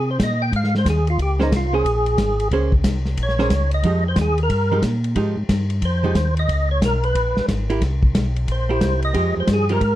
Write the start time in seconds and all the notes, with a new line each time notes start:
Already playing: C3 G#4
0.11 C5
0.19 A#2, kick, snare, hi-hat pedal, ride
0.23 D#5
0.42 G5
0.52 G#2 F5, kick, ride
0.64 snare
0.75 C5, snare
0.85 D#2, kick, snare, hi-hat pedal, ride
0.90 G#4
1.07 F4, ride
1.19 C#2 G4, kick, ride
1.40 A#3 C#4 D#4 G#4 C5, snare
1.51 C2, kick, snare, hi-hat pedal, ride
1.56 F4
1.73 A#3 C#4 G#4 C5
1.85 A#1, kick, ride
2.06 ride
2.18 G#1, kick, snare, hi-hat pedal, ride
2.40 ride
2.51 C#2 A#3 C#4 G#4 C5, kick, ride
2.72 kick
2.84 C2, kick, snare, hi-hat pedal, ride
3.05 snare
3.17 A#1, kick, ride
3.23 C#5
3.29 snare
3.39 A#3 C#4 G#4 C5, snare
3.50 C#2, kick, snare, hi-hat pedal, ride
3.71 D#5, ride
3.83 F2 F3 G#3 D#4 G4, kick, ride
4.08 C5
4.16 D#2, kick, snare, hi-hat pedal, ride
4.21 G#4
4.38 ride
4.43 A#4
4.49 G2, kick, ride
4.72 F3 G#3 D#4 G4
4.82 A#2, kick, snare, hi-hat pedal, ride
5.04 ride
5.16 G#2 F3 G#3 D#4 G4, kick, ride
5.37 G#2
5.49 G2, kick, snare, hi-hat pedal, ride
5.70 ride
5.82 F2 C5, kick, ride
6.04 F3 G#3 D#4 G4
6.15 D#2, kick, snare, hi-hat pedal, ride
6.37 D#5, ride
6.49 C#2, kick, ride
6.71 C#5
6.82 B1 A#4, kick, snare, hi-hat pedal, ride
7.04 B4, ride
7.15 A#1, kick, ride
7.35 A#1, snare
7.48 G#1, kick, snare, hi-hat pedal, ride
7.70 A#3 E4 G4, ride
7.81 C2, kick, snare, ride
8.03 kick
8.15 B1, kick, snare, hi-hat pedal, ride
8.36 ride
8.48 A#1 C5, kick, ride
8.69 A#3 E4 G4
8.81 C2, kick, snare, hi-hat pedal, ride
9.02 D#5, ride
9.14 F2 F3 G#3 D#4 G4, kick, ride
9.37 F2 C5
9.47 G2, kick, snare, hi-hat pedal, ride
9.53 G#4
9.69 F3 G#3 D#4 G4 A#4, ride
9.81 G#2, kick, ride